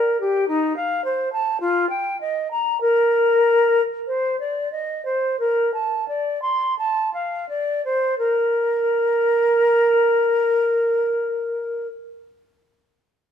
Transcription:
0.00 0.20 A#4 medium
0.20 0.47 G4 medium
0.48 0.75 D#4 medium
0.76 1.04 F5 medium
1.04 1.32 C5 soft
1.32 1.59 A5 medium
1.60 1.89 F4 medium
1.89 2.19 G5 soft
2.20 2.50 D#5 soft
2.51 2.80 A#5 soft
2.80 3.81 A#4 medium
4.07 4.39 C5 soft
4.39 4.71 D5 soft
4.71 5.04 D#5 soft
5.05 5.39 C5 soft
5.39 5.73 A#4 soft
5.73 6.07 A5 soft
6.08 6.41 D5 soft
6.42 6.76 C6 soft
6.78 7.12 A5 soft
7.13 7.48 F5 soft
7.49 7.84 D5 soft
7.84 8.17 C5 soft
8.18 11.86 A#4 medium

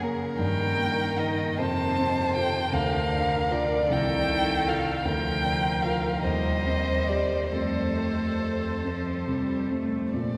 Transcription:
0.00 0.36 F#2 soft
0.00 0.25 C#3 soft
0.00 0.39 C#3 soft
0.00 0.02 A#3 soft
0.00 0.39 A#3 soft
0.00 0.41 C#4 soft
0.00 1.60 A#4 medium
0.00 0.41 C#5 soft
0.39 1.55 G2 medium
0.39 1.60 D#3 medium
0.39 1.21 G5 medium
0.78 1.43 A#3 soft
1.19 1.55 D#4 soft
1.19 1.55 A#4 soft
1.19 1.59 D#5 medium
1.58 2.69 F2 medium
1.58 2.72 C3 medium
1.58 2.71 C5 medium
1.58 2.35 A5 medium
1.98 2.58 C4 soft
2.36 2.69 F4 soft
2.36 2.69 A4 soft
2.36 2.74 G5 medium
2.71 3.88 D2 medium
2.71 3.90 D3 medium
2.71 3.88 A#4 medium
2.71 3.54 F5 medium
3.11 3.75 D4 soft
3.51 3.87 F4 soft
3.51 3.87 A#4 soft
3.51 3.94 D5 medium
3.90 5.01 C2 medium
3.90 5.03 D#3 medium
3.90 5.03 A4 medium
3.90 4.70 G5 medium
4.30 4.90 D#4 soft
4.68 5.02 F4 soft
4.68 5.02 A4 soft
4.68 5.08 F5 medium
5.05 6.20 D2 medium
5.05 6.25 F3 medium
5.05 6.24 A#4 medium
5.05 5.84 G5 medium
5.44 6.08 D4 soft
5.83 6.20 F4 soft
5.83 6.20 A#4 soft
5.83 6.23 F5 medium
6.23 7.48 D#2 soft
6.23 7.54 G3 medium
6.23 7.53 C5 medium
6.23 7.09 D#5 medium
6.66 7.34 C4 soft
7.08 7.48 G4 soft
7.08 7.48 C5 soft
7.08 7.51 D5 medium
7.52 10.09 F2 soft
7.52 8.75 A3 soft
7.52 9.91 A4 soft
7.52 9.66 C5 medium
7.97 8.66 A4 soft
8.40 9.09 C5 soft
8.83 9.29 F3 soft
8.83 9.53 C4 soft
9.27 9.96 C3 soft
9.27 9.72 G3 soft
9.70 10.13 A3 soft
9.70 10.13 C4 soft
10.13 10.37 A#2 soft
10.13 10.37 D5 soft

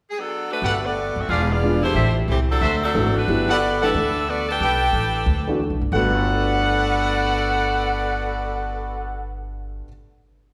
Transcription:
0.11 0.18 G#4 medium
0.19 0.52 F#3 medium
0.19 0.52 B3 medium
0.19 0.50 D4 medium
0.19 0.51 A4 medium
0.51 0.82 A3 medium
0.51 0.82 D4 medium
0.51 0.81 F#4 medium
0.51 0.82 B4 medium
0.62 1.13 G1 medium
0.62 0.77 G4 medium
0.62 0.77 A4 medium
0.62 0.77 B4 medium
0.62 0.77 F#5 medium
0.84 1.18 B3 medium
0.84 1.17 F#4 medium
0.84 1.17 A4 medium
0.84 1.17 D5 medium
1.16 1.28 F#1 medium
1.16 1.30 C4 medium
1.16 1.30 F#4 medium
1.16 1.30 A4 medium
1.16 1.30 E5 medium
1.29 1.79 E1 medium
1.29 1.49 D4 medium
1.29 1.43 F4 medium
1.29 1.43 G#4 medium
1.29 1.49 G#4 medium
1.29 1.49 B4 medium
1.29 1.43 D5 medium
1.29 1.43 F5 medium
1.29 1.49 F5 medium
1.50 1.83 B3 medium
1.50 1.84 F4 medium
1.50 1.84 G#4 medium
1.50 1.84 D5 medium
1.62 1.81 G#3 medium
1.62 1.81 B3 soft
1.62 1.82 D4 medium
1.62 1.82 F4 medium
1.83 1.94 E2 medium
1.83 2.14 A3 medium
1.83 2.14 E4 medium
1.83 2.15 G4 medium
1.83 2.14 C5 medium
1.94 2.26 A1 medium
1.94 2.10 G4 medium
1.94 2.10 A4 medium
1.94 2.10 C5 medium
1.94 2.10 E5 medium
2.28 2.59 C2 medium
2.28 2.39 E3 medium
2.28 2.39 A3 medium
2.28 2.39 C4 medium
2.28 2.39 G4 medium
2.50 2.81 F#3 medium
2.50 2.81 C4 medium
2.50 2.81 D4 medium
2.50 2.81 A4 medium
2.61 2.92 D2 medium
2.61 2.76 F#4 medium
2.61 2.76 A4 medium
2.61 2.76 C5 medium
2.61 2.76 E5 medium
2.83 3.14 F#3 medium
2.83 3.14 C4 medium
2.83 3.15 D4 medium
2.83 3.14 A4 medium
2.95 3.26 G#1 medium
2.95 3.14 E3 medium
2.95 3.14 A3 medium
2.95 3.14 D4 medium
2.95 3.15 F#4 medium
3.16 3.49 A3 medium
3.16 3.49 D4 medium
3.16 3.49 F#4 medium
3.16 3.49 B4 medium
3.28 3.91 G1 medium
3.28 3.47 F#3 medium
3.28 3.47 B3 medium
3.28 3.47 E4 medium
3.28 3.47 G4 medium
3.49 3.81 B3 medium
3.49 3.81 F#4 medium
3.49 3.57 G4 medium
3.49 3.57 A4 medium
3.49 3.81 A4 medium
3.49 3.57 B4 medium
3.49 3.81 D5 medium
3.49 3.57 F#5 loud
3.81 3.93 E3 medium
3.81 3.94 A3 medium
3.81 3.94 D4 soft
3.81 4.29 D4 medium
3.81 3.90 G4 medium
3.81 3.90 A4 medium
3.81 3.94 A4 medium
3.81 4.28 A4 medium
3.81 3.90 B4 medium
3.81 4.29 B4 medium
3.81 4.29 E5 medium
3.81 3.90 F#5 medium
3.94 4.57 D2 medium
4.29 4.49 B3 medium
4.29 4.50 F#4 medium
4.29 4.48 A4 medium
4.29 4.49 D5 medium
4.49 5.56 D4 medium
4.49 5.56 A4 medium
4.49 5.57 B4 medium
4.49 5.56 G5 loud
4.60 4.91 B1 medium
4.60 5.11 G4 medium
4.60 5.11 A4 medium
4.60 5.11 B4 medium
4.60 5.11 G5 loud
4.93 5.24 A1 medium
5.26 5.67 D2 medium
5.47 5.59 E3 medium
5.47 5.59 A3 medium
5.47 5.59 D4 medium
5.47 5.60 F#4 medium
5.70 5.81 B1 medium
5.81 5.91 F#1 medium
5.92 9.80 G1 medium
5.92 9.85 G2 medium
5.92 9.85 D3 medium
5.92 9.86 A3 medium
5.92 9.34 B3 medium
5.92 9.87 B3 medium
5.92 9.34 F#4 medium
5.92 9.88 F#4 medium
5.92 9.37 A4 medium
5.92 9.35 A4 medium
5.92 9.37 B4 medium
5.92 9.34 D5 medium
5.92 9.37 F#5 loud

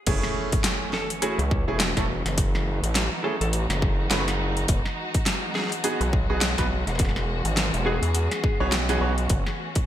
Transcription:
0.06 0.21 F#1 loud
0.06 4.64 E3 medium
0.06 4.64 A3 medium
0.06 0.93 A3 loud
0.06 2.35 C#4 medium
0.06 0.93 C#4 medium
0.06 0.93 E4 medium
0.06 9.86 F#4 medium
0.06 0.93 G#4 loud
0.06 kick loud
0.06 closed hi-hat medium
0.06 crash loud
0.06 impact medium
0.23 snare soft
0.52 kick loud
0.52 closed hi-hat medium
0.64 snare loud
0.64 closed hi-hat medium
0.93 1.09 A4 medium
0.93 snare medium
1.10 closed hi-hat medium
1.22 1.37 A3 medium
1.22 1.37 C#4 medium
1.22 1.37 E4 medium
1.22 1.38 F#4 medium
1.22 1.37 G#4 loud
1.22 closed hi-hat medium
1.39 1.65 C#2 loud
1.39 closed hi-hat soft
1.51 kick loud
1.67 1.94 E1 loud
1.67 1.79 A3 medium
1.67 1.79 C#4 medium
1.67 1.79 E4 medium
1.67 1.79 G#4 medium
1.80 snare loud
1.80 closed hi-hat medium
1.97 2.23 E1 loud
1.97 2.03 A3 medium
1.97 2.03 C#4 medium
1.97 2.03 E4 medium
1.97 2.03 A4 medium
1.97 kick medium
1.97 snare soft
1.97 closed hi-hat soft
2.25 2.80 F#1 loud
2.25 snare soft
2.25 closed hi-hat soft
2.37 6.95 D#4 medium
2.37 kick loud
2.37 closed hi-hat medium
2.55 snare soft
2.83 3.09 A1 loud
2.83 closed hi-hat medium
2.95 snare loud
2.95 closed hi-hat medium
3.24 3.34 A3 medium
3.24 3.34 C#4 medium
3.24 3.34 E4 medium
3.24 3.34 G#4 medium
3.24 3.35 A4 medium
3.41 3.67 A1 loud
3.41 3.49 A4 medium
3.41 closed hi-hat medium
3.53 closed hi-hat medium
3.70 4.09 F#1 medium
3.70 snare medium
3.70 closed hi-hat soft
3.82 kick loud
4.10 4.66 F#1 loud
4.10 4.20 A3 medium
4.10 4.20 C#4 medium
4.10 4.20 E4 medium
4.10 4.20 B4 medium
4.10 snare loud
4.10 closed hi-hat medium
4.28 snare soft
4.28 closed hi-hat soft
4.57 closed hi-hat soft
4.68 4.83 E1 loud
4.68 9.86 E3 medium
4.68 9.26 G#3 medium
4.68 kick loud
4.68 closed hi-hat medium
4.85 snare soft
5.14 kick loud
5.14 closed hi-hat medium
5.26 snare loud
5.26 closed hi-hat medium
5.55 5.71 G#4 medium
5.55 snare medium
5.59 snare medium
5.64 snare soft
5.68 snare soft
5.72 closed hi-hat medium
5.84 5.99 B3 medium
5.84 5.99 D#4 medium
5.84 5.99 F#4 medium
5.84 5.99 G#4 loud
5.84 closed hi-hat medium
6.01 6.27 B1 loud
6.01 closed hi-hat soft
6.13 kick loud
6.29 6.56 B1 loud
6.29 6.40 B3 medium
6.29 6.40 D#4 medium
6.29 6.40 F#4 medium
6.29 6.40 G#4 loud
6.41 snare loud
6.41 closed hi-hat medium
6.58 6.85 B1 loud
6.58 6.65 B3 medium
6.58 6.65 D#4 medium
6.58 6.65 F#4 medium
6.58 6.65 B4 medium
6.58 kick medium
6.58 snare soft
6.58 closed hi-hat soft
6.87 7.42 E1 loud
6.87 snare soft
6.87 closed hi-hat soft
6.89 snare soft
6.95 snare soft
6.99 9.86 C#4 medium
6.99 kick loud
6.99 snare soft
6.99 closed hi-hat medium
7.05 snare soft
7.09 snare soft
7.16 snare soft
7.45 7.71 G#1 loud
7.45 closed hi-hat medium
7.57 snare loud
7.57 closed hi-hat medium
7.74 8.00 E1 loud
7.74 closed hi-hat soft
7.86 7.95 B3 medium
7.86 7.95 D#4 medium
7.86 7.95 F#4 medium
7.86 7.95 G#4 medium
7.86 8.68 G#4 medium
8.02 8.29 E2 loud
8.02 closed hi-hat medium
8.15 closed hi-hat medium
8.31 snare soft
8.31 closed hi-hat soft
8.44 kick loud
8.60 8.99 B1 loud
8.60 8.71 B3 medium
8.60 8.71 D#4 medium
8.60 8.71 F#4 medium
8.60 8.71 C#5 loud
8.72 snare loud
8.72 closed hi-hat medium
8.89 8.98 B3 medium
8.89 8.98 D#4 medium
8.89 8.98 F#4 medium
8.89 8.98 G#4 loud
8.89 snare soft
8.89 closed hi-hat soft
9.01 9.28 B1 loud
9.01 9.11 B3 medium
9.01 9.11 D#4 medium
9.01 9.11 F#4 medium
9.01 9.11 C#5 medium
9.18 closed hi-hat soft
9.29 9.44 F#1 loud
9.29 9.86 A3 medium
9.29 kick loud
9.29 closed hi-hat medium
9.46 snare soft
9.75 kick loud
9.75 closed hi-hat medium

